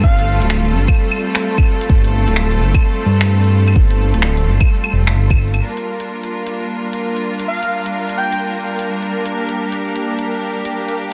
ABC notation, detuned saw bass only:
X:1
M:4/4
L:1/16
Q:"Swing 16ths" 1/4=129
K:Gm
V:1 name="Detuned saw bass" clef=bass
G,,,3 D,,,3 G,,, z8 z | G,,,3 D,,,3 G,,, z3 G,,6 | G,,,3 D,,,3 G,,, z3 F,,,2 G,,,4 | z16 |
z16 | z16 |]